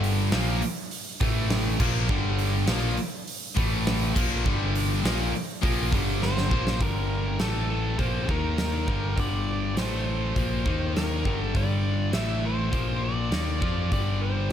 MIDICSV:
0, 0, Header, 1, 5, 480
1, 0, Start_track
1, 0, Key_signature, -2, "minor"
1, 0, Tempo, 588813
1, 1701, Time_signature, 4, 2, 24, 8
1, 5544, Tempo, 593472
1, 11790, End_track
2, 0, Start_track
2, 0, Title_t, "Lead electric guitar"
2, 0, Program_c, 0, 29
2, 5081, Note_on_c, 0, 72, 96
2, 5558, Note_off_c, 0, 72, 0
2, 5561, Note_on_c, 0, 70, 91
2, 6030, Note_off_c, 0, 70, 0
2, 6034, Note_on_c, 0, 69, 78
2, 6251, Note_off_c, 0, 69, 0
2, 6275, Note_on_c, 0, 69, 76
2, 6505, Note_off_c, 0, 69, 0
2, 6508, Note_on_c, 0, 72, 90
2, 6752, Note_off_c, 0, 72, 0
2, 6764, Note_on_c, 0, 70, 93
2, 7482, Note_on_c, 0, 74, 96
2, 7493, Note_off_c, 0, 70, 0
2, 7951, Note_on_c, 0, 72, 88
2, 7965, Note_off_c, 0, 74, 0
2, 8874, Note_off_c, 0, 72, 0
2, 8915, Note_on_c, 0, 70, 88
2, 9263, Note_off_c, 0, 70, 0
2, 9263, Note_on_c, 0, 69, 88
2, 9395, Note_on_c, 0, 74, 98
2, 9402, Note_off_c, 0, 69, 0
2, 9863, Note_off_c, 0, 74, 0
2, 9866, Note_on_c, 0, 76, 97
2, 10111, Note_off_c, 0, 76, 0
2, 10118, Note_on_c, 0, 72, 93
2, 10593, Note_on_c, 0, 74, 107
2, 10604, Note_off_c, 0, 72, 0
2, 11276, Note_off_c, 0, 74, 0
2, 11308, Note_on_c, 0, 74, 98
2, 11540, Note_on_c, 0, 72, 92
2, 11553, Note_off_c, 0, 74, 0
2, 11790, Note_off_c, 0, 72, 0
2, 11790, End_track
3, 0, Start_track
3, 0, Title_t, "Distorted electric guitar"
3, 0, Program_c, 1, 30
3, 0, Note_on_c, 1, 43, 107
3, 0, Note_on_c, 1, 50, 111
3, 0, Note_on_c, 1, 55, 112
3, 252, Note_off_c, 1, 43, 0
3, 254, Note_off_c, 1, 50, 0
3, 258, Note_off_c, 1, 55, 0
3, 260, Note_on_c, 1, 46, 97
3, 265, Note_on_c, 1, 53, 105
3, 274, Note_on_c, 1, 58, 112
3, 494, Note_off_c, 1, 46, 0
3, 497, Note_off_c, 1, 53, 0
3, 501, Note_off_c, 1, 58, 0
3, 983, Note_on_c, 1, 45, 93
3, 992, Note_on_c, 1, 52, 99
3, 994, Note_on_c, 1, 57, 95
3, 1452, Note_off_c, 1, 45, 0
3, 1455, Note_off_c, 1, 52, 0
3, 1456, Note_on_c, 1, 46, 81
3, 1458, Note_on_c, 1, 53, 88
3, 1460, Note_off_c, 1, 57, 0
3, 1465, Note_on_c, 1, 58, 90
3, 1691, Note_off_c, 1, 46, 0
3, 1692, Note_off_c, 1, 53, 0
3, 1694, Note_on_c, 1, 43, 93
3, 1696, Note_off_c, 1, 58, 0
3, 1699, Note_on_c, 1, 50, 108
3, 1703, Note_on_c, 1, 55, 118
3, 2170, Note_off_c, 1, 43, 0
3, 2172, Note_off_c, 1, 50, 0
3, 2174, Note_off_c, 1, 55, 0
3, 2180, Note_on_c, 1, 46, 97
3, 2186, Note_on_c, 1, 53, 105
3, 2194, Note_on_c, 1, 58, 114
3, 2413, Note_off_c, 1, 46, 0
3, 2416, Note_off_c, 1, 53, 0
3, 2420, Note_off_c, 1, 58, 0
3, 2908, Note_on_c, 1, 45, 96
3, 2916, Note_on_c, 1, 52, 104
3, 2925, Note_on_c, 1, 57, 97
3, 3377, Note_off_c, 1, 45, 0
3, 3381, Note_off_c, 1, 52, 0
3, 3386, Note_off_c, 1, 57, 0
3, 3386, Note_on_c, 1, 46, 88
3, 3391, Note_on_c, 1, 53, 84
3, 3397, Note_on_c, 1, 58, 97
3, 3616, Note_off_c, 1, 46, 0
3, 3618, Note_off_c, 1, 53, 0
3, 3622, Note_off_c, 1, 58, 0
3, 3626, Note_on_c, 1, 43, 97
3, 3628, Note_on_c, 1, 50, 101
3, 3635, Note_on_c, 1, 55, 106
3, 4096, Note_off_c, 1, 43, 0
3, 4097, Note_off_c, 1, 50, 0
3, 4101, Note_off_c, 1, 55, 0
3, 4114, Note_on_c, 1, 46, 97
3, 4117, Note_on_c, 1, 53, 93
3, 4123, Note_on_c, 1, 58, 98
3, 4340, Note_off_c, 1, 46, 0
3, 4342, Note_off_c, 1, 53, 0
3, 4345, Note_off_c, 1, 58, 0
3, 4590, Note_on_c, 1, 46, 86
3, 4597, Note_on_c, 1, 53, 91
3, 4603, Note_on_c, 1, 58, 105
3, 4819, Note_off_c, 1, 46, 0
3, 4823, Note_off_c, 1, 53, 0
3, 4825, Note_off_c, 1, 58, 0
3, 4829, Note_on_c, 1, 43, 98
3, 4833, Note_on_c, 1, 50, 105
3, 4840, Note_on_c, 1, 55, 99
3, 5300, Note_off_c, 1, 43, 0
3, 5302, Note_off_c, 1, 50, 0
3, 5306, Note_off_c, 1, 55, 0
3, 5310, Note_on_c, 1, 46, 88
3, 5315, Note_on_c, 1, 53, 83
3, 5322, Note_on_c, 1, 58, 99
3, 5540, Note_off_c, 1, 46, 0
3, 5543, Note_off_c, 1, 53, 0
3, 5545, Note_on_c, 1, 43, 85
3, 5546, Note_off_c, 1, 58, 0
3, 5555, Note_on_c, 1, 50, 99
3, 5556, Note_on_c, 1, 55, 103
3, 6016, Note_off_c, 1, 43, 0
3, 6021, Note_off_c, 1, 50, 0
3, 6022, Note_off_c, 1, 55, 0
3, 6027, Note_on_c, 1, 45, 91
3, 6036, Note_on_c, 1, 52, 92
3, 6038, Note_on_c, 1, 57, 101
3, 6491, Note_off_c, 1, 45, 0
3, 6494, Note_on_c, 1, 46, 83
3, 6501, Note_off_c, 1, 52, 0
3, 6502, Note_off_c, 1, 57, 0
3, 6507, Note_on_c, 1, 53, 93
3, 6508, Note_on_c, 1, 58, 91
3, 6731, Note_off_c, 1, 46, 0
3, 6737, Note_off_c, 1, 53, 0
3, 6737, Note_off_c, 1, 58, 0
3, 6747, Note_on_c, 1, 51, 85
3, 6752, Note_on_c, 1, 58, 88
3, 6759, Note_on_c, 1, 63, 95
3, 7216, Note_off_c, 1, 51, 0
3, 7219, Note_off_c, 1, 58, 0
3, 7222, Note_off_c, 1, 63, 0
3, 7226, Note_on_c, 1, 43, 79
3, 7229, Note_on_c, 1, 50, 87
3, 7235, Note_on_c, 1, 55, 84
3, 7446, Note_off_c, 1, 43, 0
3, 7454, Note_off_c, 1, 50, 0
3, 7456, Note_on_c, 1, 43, 96
3, 7457, Note_off_c, 1, 55, 0
3, 7464, Note_on_c, 1, 50, 108
3, 7467, Note_on_c, 1, 55, 105
3, 7931, Note_off_c, 1, 43, 0
3, 7935, Note_off_c, 1, 50, 0
3, 7937, Note_off_c, 1, 55, 0
3, 7940, Note_on_c, 1, 45, 92
3, 7952, Note_on_c, 1, 52, 93
3, 7958, Note_on_c, 1, 57, 89
3, 8413, Note_off_c, 1, 45, 0
3, 8419, Note_off_c, 1, 52, 0
3, 8419, Note_on_c, 1, 46, 89
3, 8422, Note_off_c, 1, 57, 0
3, 8427, Note_on_c, 1, 53, 92
3, 8432, Note_on_c, 1, 58, 93
3, 8653, Note_off_c, 1, 46, 0
3, 8657, Note_off_c, 1, 53, 0
3, 8659, Note_off_c, 1, 58, 0
3, 8666, Note_on_c, 1, 51, 89
3, 8669, Note_on_c, 1, 58, 84
3, 8676, Note_on_c, 1, 63, 100
3, 9136, Note_off_c, 1, 51, 0
3, 9138, Note_off_c, 1, 58, 0
3, 9141, Note_on_c, 1, 43, 78
3, 9142, Note_off_c, 1, 63, 0
3, 9146, Note_on_c, 1, 50, 87
3, 9153, Note_on_c, 1, 55, 96
3, 9368, Note_off_c, 1, 43, 0
3, 9376, Note_off_c, 1, 50, 0
3, 9378, Note_on_c, 1, 43, 89
3, 9380, Note_off_c, 1, 55, 0
3, 9386, Note_on_c, 1, 50, 103
3, 9390, Note_on_c, 1, 55, 103
3, 9843, Note_off_c, 1, 50, 0
3, 9847, Note_on_c, 1, 45, 96
3, 9850, Note_off_c, 1, 55, 0
3, 9852, Note_off_c, 1, 43, 0
3, 9853, Note_on_c, 1, 52, 101
3, 9862, Note_on_c, 1, 57, 96
3, 10319, Note_off_c, 1, 45, 0
3, 10322, Note_on_c, 1, 46, 83
3, 10329, Note_off_c, 1, 52, 0
3, 10332, Note_on_c, 1, 53, 92
3, 10335, Note_off_c, 1, 57, 0
3, 10341, Note_on_c, 1, 58, 99
3, 10805, Note_off_c, 1, 46, 0
3, 10809, Note_off_c, 1, 58, 0
3, 10810, Note_off_c, 1, 53, 0
3, 10813, Note_on_c, 1, 51, 81
3, 10818, Note_on_c, 1, 58, 82
3, 10823, Note_on_c, 1, 63, 98
3, 11042, Note_off_c, 1, 51, 0
3, 11045, Note_on_c, 1, 53, 78
3, 11047, Note_off_c, 1, 58, 0
3, 11051, Note_on_c, 1, 60, 77
3, 11055, Note_off_c, 1, 63, 0
3, 11058, Note_on_c, 1, 65, 84
3, 11279, Note_on_c, 1, 43, 90
3, 11285, Note_off_c, 1, 53, 0
3, 11288, Note_on_c, 1, 50, 99
3, 11290, Note_off_c, 1, 60, 0
3, 11294, Note_off_c, 1, 65, 0
3, 11297, Note_on_c, 1, 55, 103
3, 11764, Note_off_c, 1, 43, 0
3, 11769, Note_off_c, 1, 50, 0
3, 11773, Note_off_c, 1, 55, 0
3, 11790, End_track
4, 0, Start_track
4, 0, Title_t, "Picked electric bass"
4, 0, Program_c, 2, 34
4, 0, Note_on_c, 2, 31, 91
4, 233, Note_off_c, 2, 31, 0
4, 263, Note_on_c, 2, 34, 87
4, 486, Note_off_c, 2, 34, 0
4, 988, Note_on_c, 2, 33, 90
4, 1432, Note_off_c, 2, 33, 0
4, 1469, Note_on_c, 2, 34, 101
4, 1688, Note_off_c, 2, 34, 0
4, 1705, Note_on_c, 2, 31, 89
4, 2150, Note_off_c, 2, 31, 0
4, 2187, Note_on_c, 2, 34, 95
4, 2407, Note_off_c, 2, 34, 0
4, 2910, Note_on_c, 2, 33, 90
4, 3353, Note_off_c, 2, 33, 0
4, 3398, Note_on_c, 2, 34, 94
4, 3613, Note_off_c, 2, 34, 0
4, 3633, Note_on_c, 2, 31, 85
4, 4075, Note_off_c, 2, 31, 0
4, 4102, Note_on_c, 2, 34, 93
4, 4325, Note_off_c, 2, 34, 0
4, 4597, Note_on_c, 2, 34, 93
4, 4813, Note_off_c, 2, 34, 0
4, 4834, Note_on_c, 2, 31, 92
4, 5277, Note_off_c, 2, 31, 0
4, 5311, Note_on_c, 2, 34, 100
4, 5532, Note_off_c, 2, 34, 0
4, 5550, Note_on_c, 2, 31, 84
4, 5993, Note_off_c, 2, 31, 0
4, 6014, Note_on_c, 2, 33, 78
4, 6465, Note_off_c, 2, 33, 0
4, 6503, Note_on_c, 2, 34, 82
4, 6725, Note_off_c, 2, 34, 0
4, 6748, Note_on_c, 2, 39, 87
4, 7192, Note_off_c, 2, 39, 0
4, 7223, Note_on_c, 2, 31, 91
4, 7445, Note_off_c, 2, 31, 0
4, 7466, Note_on_c, 2, 31, 81
4, 7911, Note_off_c, 2, 31, 0
4, 7928, Note_on_c, 2, 33, 84
4, 8382, Note_off_c, 2, 33, 0
4, 8426, Note_on_c, 2, 34, 86
4, 8647, Note_off_c, 2, 34, 0
4, 8668, Note_on_c, 2, 39, 87
4, 9112, Note_off_c, 2, 39, 0
4, 9148, Note_on_c, 2, 31, 94
4, 9368, Note_off_c, 2, 31, 0
4, 9385, Note_on_c, 2, 31, 87
4, 9831, Note_off_c, 2, 31, 0
4, 9847, Note_on_c, 2, 33, 80
4, 10302, Note_off_c, 2, 33, 0
4, 10337, Note_on_c, 2, 34, 82
4, 10788, Note_off_c, 2, 34, 0
4, 10819, Note_on_c, 2, 39, 86
4, 11044, Note_off_c, 2, 39, 0
4, 11063, Note_on_c, 2, 41, 88
4, 11286, Note_off_c, 2, 41, 0
4, 11302, Note_on_c, 2, 31, 75
4, 11751, Note_off_c, 2, 31, 0
4, 11790, End_track
5, 0, Start_track
5, 0, Title_t, "Drums"
5, 30, Note_on_c, 9, 46, 64
5, 112, Note_off_c, 9, 46, 0
5, 259, Note_on_c, 9, 46, 81
5, 263, Note_on_c, 9, 38, 119
5, 341, Note_off_c, 9, 46, 0
5, 344, Note_off_c, 9, 38, 0
5, 504, Note_on_c, 9, 46, 66
5, 586, Note_off_c, 9, 46, 0
5, 743, Note_on_c, 9, 46, 89
5, 824, Note_off_c, 9, 46, 0
5, 983, Note_on_c, 9, 46, 61
5, 986, Note_on_c, 9, 36, 111
5, 1064, Note_off_c, 9, 46, 0
5, 1068, Note_off_c, 9, 36, 0
5, 1224, Note_on_c, 9, 46, 71
5, 1227, Note_on_c, 9, 38, 101
5, 1305, Note_off_c, 9, 46, 0
5, 1308, Note_off_c, 9, 38, 0
5, 1465, Note_on_c, 9, 49, 100
5, 1466, Note_on_c, 9, 36, 112
5, 1547, Note_off_c, 9, 49, 0
5, 1548, Note_off_c, 9, 36, 0
5, 1706, Note_on_c, 9, 36, 108
5, 1787, Note_off_c, 9, 36, 0
5, 1944, Note_on_c, 9, 46, 61
5, 2026, Note_off_c, 9, 46, 0
5, 2178, Note_on_c, 9, 46, 81
5, 2182, Note_on_c, 9, 38, 109
5, 2260, Note_off_c, 9, 46, 0
5, 2263, Note_off_c, 9, 38, 0
5, 2423, Note_on_c, 9, 46, 63
5, 2504, Note_off_c, 9, 46, 0
5, 2669, Note_on_c, 9, 46, 82
5, 2751, Note_off_c, 9, 46, 0
5, 2904, Note_on_c, 9, 46, 65
5, 2909, Note_on_c, 9, 36, 116
5, 2986, Note_off_c, 9, 46, 0
5, 2991, Note_off_c, 9, 36, 0
5, 3153, Note_on_c, 9, 46, 72
5, 3156, Note_on_c, 9, 38, 105
5, 3234, Note_off_c, 9, 46, 0
5, 3237, Note_off_c, 9, 38, 0
5, 3392, Note_on_c, 9, 36, 114
5, 3395, Note_on_c, 9, 49, 105
5, 3474, Note_off_c, 9, 36, 0
5, 3477, Note_off_c, 9, 49, 0
5, 3634, Note_on_c, 9, 36, 110
5, 3716, Note_off_c, 9, 36, 0
5, 3875, Note_on_c, 9, 46, 62
5, 3956, Note_off_c, 9, 46, 0
5, 4118, Note_on_c, 9, 46, 84
5, 4121, Note_on_c, 9, 38, 107
5, 4199, Note_off_c, 9, 46, 0
5, 4203, Note_off_c, 9, 38, 0
5, 4362, Note_on_c, 9, 46, 71
5, 4444, Note_off_c, 9, 46, 0
5, 4590, Note_on_c, 9, 46, 84
5, 4591, Note_on_c, 9, 36, 112
5, 4672, Note_off_c, 9, 46, 0
5, 4673, Note_off_c, 9, 36, 0
5, 4830, Note_on_c, 9, 36, 112
5, 4837, Note_on_c, 9, 46, 65
5, 4911, Note_off_c, 9, 36, 0
5, 4918, Note_off_c, 9, 46, 0
5, 5073, Note_on_c, 9, 38, 62
5, 5154, Note_off_c, 9, 38, 0
5, 5195, Note_on_c, 9, 38, 64
5, 5277, Note_off_c, 9, 38, 0
5, 5310, Note_on_c, 9, 36, 95
5, 5391, Note_off_c, 9, 36, 0
5, 5436, Note_on_c, 9, 38, 92
5, 5518, Note_off_c, 9, 38, 0
5, 5548, Note_on_c, 9, 36, 104
5, 5551, Note_on_c, 9, 46, 48
5, 5629, Note_off_c, 9, 36, 0
5, 5632, Note_off_c, 9, 46, 0
5, 6024, Note_on_c, 9, 46, 46
5, 6027, Note_on_c, 9, 38, 108
5, 6105, Note_off_c, 9, 46, 0
5, 6108, Note_off_c, 9, 38, 0
5, 6505, Note_on_c, 9, 36, 98
5, 6508, Note_on_c, 9, 46, 48
5, 6586, Note_off_c, 9, 36, 0
5, 6589, Note_off_c, 9, 46, 0
5, 6747, Note_on_c, 9, 36, 105
5, 6828, Note_off_c, 9, 36, 0
5, 6983, Note_on_c, 9, 46, 45
5, 6986, Note_on_c, 9, 38, 99
5, 7064, Note_off_c, 9, 46, 0
5, 7067, Note_off_c, 9, 38, 0
5, 7225, Note_on_c, 9, 36, 107
5, 7306, Note_off_c, 9, 36, 0
5, 7465, Note_on_c, 9, 36, 101
5, 7467, Note_on_c, 9, 46, 54
5, 7546, Note_off_c, 9, 36, 0
5, 7548, Note_off_c, 9, 46, 0
5, 7945, Note_on_c, 9, 46, 53
5, 7948, Note_on_c, 9, 38, 96
5, 8026, Note_off_c, 9, 46, 0
5, 8029, Note_off_c, 9, 38, 0
5, 8424, Note_on_c, 9, 36, 103
5, 8426, Note_on_c, 9, 46, 51
5, 8505, Note_off_c, 9, 36, 0
5, 8507, Note_off_c, 9, 46, 0
5, 8663, Note_on_c, 9, 36, 108
5, 8744, Note_off_c, 9, 36, 0
5, 8911, Note_on_c, 9, 46, 47
5, 8914, Note_on_c, 9, 38, 94
5, 8992, Note_off_c, 9, 46, 0
5, 8995, Note_off_c, 9, 38, 0
5, 9146, Note_on_c, 9, 36, 98
5, 9226, Note_off_c, 9, 36, 0
5, 9383, Note_on_c, 9, 36, 99
5, 9384, Note_on_c, 9, 46, 48
5, 9464, Note_off_c, 9, 36, 0
5, 9465, Note_off_c, 9, 46, 0
5, 9854, Note_on_c, 9, 46, 44
5, 9857, Note_on_c, 9, 38, 103
5, 9934, Note_off_c, 9, 46, 0
5, 9938, Note_off_c, 9, 38, 0
5, 10337, Note_on_c, 9, 46, 47
5, 10339, Note_on_c, 9, 36, 106
5, 10418, Note_off_c, 9, 46, 0
5, 10419, Note_off_c, 9, 36, 0
5, 10816, Note_on_c, 9, 46, 46
5, 10819, Note_on_c, 9, 38, 103
5, 10897, Note_off_c, 9, 46, 0
5, 10900, Note_off_c, 9, 38, 0
5, 11060, Note_on_c, 9, 36, 107
5, 11141, Note_off_c, 9, 36, 0
5, 11301, Note_on_c, 9, 36, 100
5, 11301, Note_on_c, 9, 46, 50
5, 11382, Note_off_c, 9, 36, 0
5, 11382, Note_off_c, 9, 46, 0
5, 11790, End_track
0, 0, End_of_file